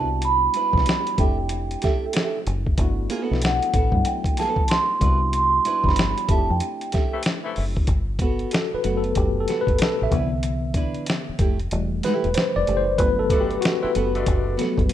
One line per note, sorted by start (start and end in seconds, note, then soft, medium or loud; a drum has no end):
0.00 0.48 C2 medium
0.00 0.61 G3 medium
0.00 0.62 B3 medium
0.00 0.62 D4 medium
0.00 0.62 E4 medium
0.00 0.63 F#4 medium
0.00 0.27 A5 medium
0.22 1.22 B5 loud
0.22 closed hi-hat medium
0.54 0.85 D4 medium
0.54 0.85 E4 medium
0.54 0.85 B4 medium
0.54 closed hi-hat medium
0.73 0.85 C2 medium
0.73 1.18 G3 medium
0.73 1.19 B3 medium
0.73 1.19 D4 medium
0.73 1.19 E4 medium
0.73 kick medium
0.78 1.20 G4 medium
0.78 snare soft
0.86 snare loud
0.86 closed hi-hat medium
1.07 closed hi-hat soft
1.18 1.75 F1 medium
1.18 2.33 A3 medium
1.18 2.34 C4 medium
1.18 2.34 D4 medium
1.18 2.34 E4 medium
1.18 1.36 G4 medium
1.18 2.35 G4 medium
1.18 1.36 A4 medium
1.18 1.36 E5 medium
1.18 2.11 G5 medium
1.18 kick loud
1.18 closed hi-hat medium
1.49 muted nylon-string guitar stroke soft
1.49 closed hi-hat medium
1.71 closed hi-hat soft
1.82 2.04 G4 medium
1.82 2.04 A4 medium
1.82 2.04 E5 loud
1.82 kick medium
1.82 snare soft
1.82 closed hi-hat medium
2.13 2.37 G4 medium
2.13 2.38 A4 medium
2.13 2.38 E5 medium
2.13 snare loud
2.13 closed hi-hat medium
2.47 2.75 F#1 medium
2.47 closed hi-hat medium
2.67 kick medium
2.78 3.07 G1 medium
2.78 3.22 A3 medium
2.78 3.23 B3 medium
2.78 3.23 D4 medium
2.78 3.23 E4 medium
2.78 3.24 F#4 medium
2.78 kick medium
2.78 closed hi-hat medium
3.10 3.23 A#3 medium
3.10 3.22 F4 medium
3.10 3.23 G#4 loud
3.10 closed hi-hat medium
3.22 3.40 B3 medium
3.22 3.40 F#4 medium
3.22 3.40 A4 loud
3.30 3.59 B1 medium
3.30 3.83 A3 medium
3.30 3.83 B3 medium
3.30 3.84 D4 medium
3.30 3.84 E4 medium
3.30 3.84 A4 medium
3.30 snare soft
3.42 4.08 F#5 loud
3.42 snare loud
3.42 closed hi-hat medium
3.62 closed hi-hat soft
3.74 3.92 A1 medium
3.74 3.91 B3 medium
3.74 3.92 F#4 medium
3.74 3.92 A4 medium
3.74 kick medium
3.74 closed hi-hat medium
3.92 4.03 G2 loud
3.92 5.01 F#3 medium
3.92 5.00 A3 medium
3.92 5.00 B3 medium
3.92 5.00 D4 medium
3.92 5.01 E4 medium
3.92 kick medium
4.05 4.39 G5 medium
4.05 muted nylon-string guitar stroke soft
4.05 closed hi-hat medium
4.24 kick medium
4.24 closed hi-hat soft
4.37 4.61 B3 medium
4.37 4.62 F#4 medium
4.37 4.62 A4 medium
4.37 4.71 A5 medium
4.37 snare soft
4.37 closed hi-hat medium
4.56 kick medium
4.68 5.33 C6 medium
4.68 snare loud
4.68 closed hi-hat medium
5.00 5.59 C2 loud
5.00 5.71 G3 medium
5.00 5.72 B3 medium
5.00 5.19 D4 medium
5.00 5.72 D4 medium
5.00 5.19 E4 medium
5.00 5.73 E4 medium
5.00 5.73 F#4 medium
5.00 5.19 B4 medium
5.00 kick medium
5.00 closed hi-hat medium
5.33 5.88 C6 loud
5.33 closed hi-hat medium
5.65 5.95 D4 loud
5.65 5.96 E4 loud
5.65 5.96 B4 loud
5.65 closed hi-hat medium
5.84 6.13 G1 medium
5.84 6.29 G3 medium
5.84 6.29 B3 medium
5.84 6.29 D4 medium
5.84 6.29 E4 medium
5.84 6.30 G4 medium
5.84 6.30 B5 medium
5.84 kick medium
5.89 snare soft
5.96 snare loud
5.96 closed hi-hat medium
6.18 closed hi-hat soft
6.28 6.47 F1 medium
6.28 7.44 A3 medium
6.28 7.44 C4 medium
6.28 7.44 D4 medium
6.28 7.45 E4 medium
6.28 6.38 F4 medium
6.28 6.47 G4 medium
6.28 6.47 A4 medium
6.28 6.47 E5 medium
6.28 6.51 A5 medium
6.28 kick loud
6.28 closed hi-hat medium
6.38 7.48 G4 medium
6.50 6.60 F2 medium
6.50 7.21 G5 medium
6.60 muted nylon-string guitar stroke soft
6.60 closed hi-hat medium
6.81 closed hi-hat soft
6.92 7.14 G4 medium
6.92 7.14 A4 medium
6.92 7.15 E5 medium
6.92 kick medium
6.92 snare soft
6.92 closed hi-hat medium
7.13 7.23 C3 medium
7.13 7.23 E3 medium
7.13 7.23 A3 medium
7.13 7.23 E4 medium
7.23 snare loud
7.23 closed hi-hat medium
7.44 7.65 C3 medium
7.44 7.65 E3 medium
7.44 7.65 A3 medium
7.44 7.65 E4 medium
7.56 7.85 F#1 medium
7.56 open hi-hat soft
7.77 kick medium
7.87 8.45 G1 medium
7.87 kick medium
7.87 closed hi-hat medium
8.19 8.51 B3 medium
8.19 8.54 F#4 medium
8.19 8.51 F#4 medium
8.19 8.51 A4 medium
8.19 kick medium
8.19 closed hi-hat medium
8.39 closed hi-hat soft
8.51 8.75 A4 medium
8.51 snare loud
8.51 closed hi-hat medium
8.74 8.96 B4 medium
8.74 muted fingered electric bass stroke soft
8.84 9.13 F#1 medium
8.84 9.30 F#3 soft
8.84 9.30 A3 medium
8.84 9.02 B3 medium
8.84 9.30 B3 medium
8.84 9.02 F#4 medium
8.84 9.03 A4 medium
8.84 closed hi-hat medium
8.97 9.18 A4 medium
9.04 closed hi-hat soft
9.15 9.45 F#1 medium
9.15 9.39 G4 medium
9.15 muted nylon-string guitar stroke soft
9.15 kick medium
9.15 closed hi-hat medium
9.40 9.61 A4 medium
9.48 9.70 B3 medium
9.48 9.70 F#4 medium
9.48 9.70 A4 medium
9.48 snare soft
9.48 closed hi-hat medium
9.61 9.82 B4 medium
9.67 9.78 G1 medium
9.67 kick medium
9.67 closed hi-hat soft
9.79 snare loud
9.79 closed hi-hat medium
9.83 10.03 A4 medium
10.02 10.11 A1 medium
10.02 10.94 E5 medium
10.11 10.97 C2 medium
10.11 10.58 D3 medium
10.11 10.58 E3 soft
10.11 10.59 B3 medium
10.11 10.30 D4 medium
10.11 10.30 E4 medium
10.11 10.30 B4 medium
10.11 kick medium
10.11 closed hi-hat soft
10.43 closed hi-hat medium
10.74 11.06 D4 medium
10.74 11.06 E4 medium
10.74 11.07 B4 medium
10.74 kick medium
10.74 closed hi-hat medium
10.94 closed hi-hat soft
11.06 snare loud
11.06 closed hi-hat medium
11.29 muted fingered electric bass stroke soft
11.39 11.68 F1 medium
11.39 11.57 A3 medium
11.39 11.57 E4 medium
11.39 11.58 G4 medium
11.39 kick loud
11.39 closed hi-hat medium
11.59 closed hi-hat soft
11.71 12.00 E1 loud
11.71 12.95 E3 medium
11.71 12.96 G3 soft
11.71 12.96 A3 medium
11.71 muted nylon-string guitar stroke soft
11.71 closed hi-hat medium
12.03 12.27 A3 medium
12.03 12.27 E4 medium
12.03 12.28 G4 medium
12.03 12.19 B4 medium
12.03 snare soft
12.03 closed hi-hat medium
12.24 12.34 E1 medium
12.24 closed hi-hat soft
12.34 12.57 C5 medium
12.34 snare loud
12.34 closed hi-hat medium
12.56 12.66 F1 medium
12.56 12.76 D5 loud
12.67 12.99 F#1 medium
12.67 12.84 A3 medium
12.67 12.85 E4 medium
12.67 12.85 G4 medium
12.67 closed hi-hat medium
12.77 12.99 C5 loud
12.98 13.56 G1 loud
12.98 13.45 F#3 medium
12.98 13.46 A3 soft
12.98 13.46 B3 medium
12.98 13.19 B4 loud
12.98 kick medium
12.98 closed hi-hat medium
13.19 13.42 A4 medium
13.30 13.56 B2 medium
13.30 13.56 D3 medium
13.30 13.57 A3 medium
13.30 13.61 B3 medium
13.30 13.56 D4 medium
13.30 13.61 F#4 medium
13.30 13.62 A4 medium
13.30 kick medium
13.30 closed hi-hat medium
13.40 13.50 G4 medium
13.51 closed hi-hat soft
13.61 13.82 F#4 medium
13.61 closed hi-hat medium
13.65 snare loud
13.83 13.92 E3 medium
13.83 13.92 C4 medium
13.83 13.92 E4 medium
13.83 14.75 B4 medium
13.83 muted fingered electric bass stroke soft
13.95 14.24 F#1 medium
13.95 14.12 B3 medium
13.95 14.13 F#4 medium
13.95 14.13 A4 medium
13.95 closed hi-hat medium
14.15 14.56 B2 medium
14.15 14.56 D3 medium
14.15 14.56 A3 medium
14.15 14.56 D4 medium
14.15 closed hi-hat soft
14.26 14.56 F#1 medium
14.26 muted nylon-string guitar stroke soft
14.26 kick medium
14.26 closed hi-hat medium
14.57 14.87 F#3 medium
14.57 14.88 A3 soft
14.57 14.79 B3 medium
14.57 14.88 B3 medium
14.57 14.80 F#4 medium
14.57 14.80 A4 medium
14.57 closed hi-hat medium
14.61 snare soft
14.78 14.89 G1 medium
14.78 kick medium
14.78 closed hi-hat soft
14.89 closed hi-hat medium